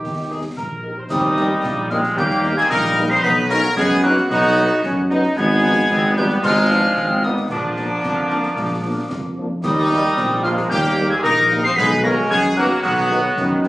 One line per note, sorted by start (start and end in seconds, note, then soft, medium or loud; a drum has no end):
0.00 0.48 D#2 soft
0.00 0.57 D#3 medium
0.00 0.26 G4 medium
0.04 concert bass drum medium
0.04 snare soft
0.30 0.40 D#4 soft
0.30 0.40 G4 soft
0.30 0.42 G#4 soft
0.30 0.40 A#4 soft
0.30 0.40 D#5 soft
0.57 1.01 A#1 medium
0.57 0.94 A#4 soft
0.57 concert bass drum medium
0.57 snare soft
0.83 0.92 D#4 soft
0.83 0.92 G4 soft
0.83 0.92 A#4 soft
0.83 0.93 D#5 soft
0.98 1.04 C5 soft
1.09 1.55 D#2 medium
1.09 1.86 D#3 loud
1.09 1.87 G3 loud
1.09 1.59 C4 medium
1.09 1.86 D#4 loud
1.09 1.86 D#6 medium
1.09 concert bass drum medium
1.09 snare medium
1.09 crash medium
1.36 1.46 G3 medium
1.36 1.46 A#3 medium
1.36 1.46 D#4 medium
1.36 snare medium
1.63 2.08 A#1 medium
1.63 1.90 A#3 medium
1.63 concert bass drum medium
1.63 snare medium
1.90 2.02 F3 medium
1.90 1.99 G3 medium
1.90 2.15 G#3 medium
1.90 1.99 A#3 medium
1.90 2.02 C4 medium
1.90 2.00 D#4 medium
1.90 2.17 F4 loud
1.90 1.96 F6 medium
1.90 snare medium
2.04 snare medium
2.16 2.61 D#2 loud
2.16 2.54 G3 loud
2.16 2.66 A#3 loud
2.16 2.57 A#3 loud
2.16 2.57 G4 loud
2.16 2.54 G6 medium
2.16 concert bass drum medium
2.16 snare medium
2.31 snare medium
2.43 2.53 G3 medium
2.43 2.53 A#3 medium
2.43 2.53 D#4 medium
2.43 snare medium
2.57 2.63 G#3 loud
2.57 2.69 C4 medium
2.57 2.70 G#4 loud
2.57 2.72 G#6 loud
2.70 3.15 A#1 medium
2.70 3.20 G3 medium
2.70 3.07 A#3 loud
2.70 3.07 D#4 loud
2.70 3.07 A#4 loud
2.70 3.12 A#6 loud
2.70 concert bass drum medium
2.70 snare medium
2.96 3.06 G3 medium
2.96 3.07 A#3 medium
2.96 3.07 D#4 medium
2.96 snare medium
3.10 3.16 C4 loud
3.10 3.22 D#4 medium
3.10 3.24 C5 loud
3.10 3.22 C7 loud
3.10 snare medium
3.22 3.68 B1 loud
3.22 3.77 F#3 medium
3.22 3.48 B3 loud
3.22 3.35 D#4 loud
3.22 3.50 B4 loud
3.22 3.51 B6 medium
3.22 concert bass drum medium
3.22 snare medium
3.22 crash soft
3.49 3.60 F#3 medium
3.49 3.62 A#3 loud
3.49 3.60 B3 medium
3.49 3.61 C#4 medium
3.49 3.60 D#4 medium
3.49 3.75 A#4 loud
3.49 3.76 A#6 loud
3.49 snare medium
3.76 4.21 F#2 loud
3.76 4.02 G#3 loud
3.76 4.01 B3 loud
3.76 4.30 B3 medium
3.76 4.02 G#4 loud
3.76 3.82 G#6 loud
3.76 concert bass drum medium
3.76 snare medium
4.03 4.16 F#3 loud
4.03 4.14 F#3 medium
4.03 4.15 A#3 loud
4.03 4.14 B3 medium
4.03 4.13 D#4 medium
4.03 4.29 F#4 loud
4.03 4.28 F#6 loud
4.03 snare medium
4.17 snare medium
4.30 4.70 B1 loud
4.30 5.06 F#3 loud
4.30 5.06 B3 loud
4.30 4.80 D#4 loud
4.30 5.06 F#4 loud
4.30 5.06 F#6 loud
4.30 concert bass drum medium
4.30 snare medium
4.44 snare medium
4.57 4.67 F#3 medium
4.57 4.67 B3 medium
4.57 4.67 D#4 medium
4.57 snare medium
4.83 5.28 F#2 loud
4.83 4.95 C#4 loud
4.83 concert bass drum medium
4.83 snare medium
5.09 5.19 F#3 loud
5.09 5.19 B3 medium
5.09 5.19 D#4 medium
5.09 5.35 D#4 loud
5.09 snare medium
5.23 snare medium
5.36 5.81 G#1 loud
5.36 6.13 G#3 loud
5.36 6.13 B3 loud
5.36 5.86 B3 loud
5.36 6.13 G#4 loud
5.36 6.13 G#6 loud
5.36 concert bass drum medium
5.36 snare medium
5.36 crash soft
5.63 5.73 F3 medium
5.63 5.73 B3 medium
5.63 5.73 D#4 medium
5.63 snare medium
5.90 6.34 G#1 loud
5.90 6.03 C4 loud
5.90 concert bass drum medium
5.90 snare medium
6.16 6.26 F3 medium
6.16 6.41 G3 loud
6.16 6.41 B3 loud
6.16 6.26 B3 medium
6.16 6.29 B3 loud
6.16 6.26 D#4 medium
6.16 6.28 G4 loud
6.16 6.23 G6 loud
6.16 snare medium
6.30 snare medium
6.43 6.88 G#1 loud
6.43 7.25 F3 loud
6.43 7.20 G#3 loud
6.43 6.68 D#4 loud
6.43 7.19 F4 loud
6.43 7.25 F6 loud
6.43 concert bass drum medium
6.43 snare medium
6.56 snare medium
6.69 6.79 F3 medium
6.69 6.79 B3 medium
6.69 6.96 D4 loud
6.69 6.79 D#4 medium
6.69 snare medium
6.96 7.41 G#1 medium
6.96 7.24 C4 medium
6.96 concert bass drum medium
6.96 snare medium
7.23 7.49 D#3 loud
7.23 7.33 F3 medium
7.23 7.35 G3 medium
7.23 7.48 B3 medium
7.23 7.33 B3 medium
7.23 7.35 D#4 medium
7.23 7.33 D#4 medium
7.23 7.50 D#6 medium
7.23 snare medium
7.37 snare medium
7.49 7.94 A#1 medium
7.49 9.33 D3 medium
7.49 9.33 F3 medium
7.49 9.36 A#3 medium
7.49 9.33 D4 loud
7.49 9.33 D6 medium
7.49 concert bass drum medium
7.49 snare medium
7.49 crash soft
7.77 7.87 F3 medium
7.77 7.87 A#3 medium
7.77 7.87 D4 medium
7.77 snare medium
8.03 8.48 F2 medium
8.03 concert bass drum medium
8.03 snare medium
8.30 8.40 F3 medium
8.30 8.40 A#3 medium
8.30 8.40 D4 medium
8.30 snare medium
8.43 snare medium
8.56 9.01 A#1 medium
8.56 concert bass drum medium
8.56 snare medium
8.84 8.93 F3 medium
8.84 8.93 A#3 medium
8.84 8.93 D4 medium
9.10 9.54 F2 medium
9.10 concert bass drum medium
9.10 snare medium
9.37 9.47 F3 medium
9.37 9.47 A#3 medium
9.37 9.47 D4 medium
9.62 10.08 D#2 loud
9.62 10.39 D#3 loud
9.62 10.13 G3 loud
9.62 10.40 G3 loud
9.62 10.39 D#4 loud
9.62 10.40 D#6 medium
9.62 concert bass drum medium
9.62 snare medium
9.62 crash medium
9.90 10.00 D#3 medium
9.90 10.00 G3 medium
9.90 10.00 A#3 medium
9.90 snare medium
10.17 10.61 A#1 medium
10.17 10.44 C4 medium
10.17 concert bass drum medium
10.17 snare medium
10.43 10.53 D#3 medium
10.43 10.70 F3 loud
10.43 10.53 G3 medium
10.43 10.70 G#3 loud
10.43 11.77 A#3 medium
10.43 10.53 A#3 medium
10.43 10.56 F4 loud
10.43 10.49 F6 loud
10.43 snare medium
10.57 snare medium
10.69 11.15 D#2 loud
10.69 11.08 G3 loud
10.69 11.10 A#3 loud
10.69 11.08 G4 loud
10.69 11.07 G6 medium
10.69 concert bass drum medium
10.69 snare medium
10.84 snare medium
10.97 11.06 D#3 medium
10.97 11.06 G3 medium
10.97 11.06 A#3 medium
10.97 snare medium
11.08 11.15 G#3 medium
11.08 11.16 C4 medium
11.08 11.16 G#6 loud
11.13 11.25 G#4 loud
11.22 11.68 A#1 loud
11.22 11.64 A#3 loud
11.22 11.60 D#4 loud
11.22 11.61 A#4 loud
11.22 11.61 A#6 loud
11.22 concert bass drum medium
11.22 snare medium
11.51 11.61 D#3 medium
11.51 11.60 G3 medium
11.51 11.60 A#3 medium
11.51 snare medium
11.62 11.75 C4 loud
11.62 11.75 D#4 loud
11.62 11.71 C5 loud
11.62 11.78 C7 loud
11.62 snare medium
11.75 12.21 B1 loud
11.75 12.26 G#3 medium
11.75 11.88 B3 loud
11.75 11.89 D#4 loud
11.75 12.02 B4 loud
11.75 12.03 B6 medium
11.75 concert bass drum loud
11.75 snare medium
11.75 crash soft
12.02 12.14 D#3 medium
12.02 12.14 F#3 medium
12.02 12.15 A#3 loud
12.02 12.14 B3 medium
12.02 12.28 C#4 medium
12.02 12.29 A#4 loud
12.02 12.10 A#6 loud
12.02 snare medium
12.30 12.70 F#2 loud
12.30 13.37 F#3 loud
12.30 12.55 G#3 loud
12.30 12.42 B3 loud
12.30 12.56 G#4 loud
12.30 12.36 G#6 loud
12.30 concert bass drum medium
12.30 snare medium
12.56 12.67 D#3 medium
12.56 12.68 F#3 loud
12.56 12.67 F#3 medium
12.56 12.81 A#3 loud
12.56 12.67 B3 medium
12.56 12.82 F#4 loud
12.56 12.63 F#6 loud
12.56 snare medium
12.70 snare medium
12.83 13.28 B1 loud
12.83 13.59 F#3 loud
12.83 13.64 B3 loud
12.83 13.60 F#4 loud
12.83 13.60 F#6 loud
12.83 concert bass drum medium
12.83 snare medium
12.97 snare medium
13.10 13.20 D#3 medium
13.10 13.20 F#3 medium
13.10 13.20 B3 medium
13.10 snare medium
13.36 13.68 F#2 loud
13.36 13.68 D#3 loud
13.36 concert bass drum medium
13.36 snare medium
13.64 13.68 D#3 medium
13.64 13.68 F#3 medium
13.64 13.68 B3 medium
13.64 snare medium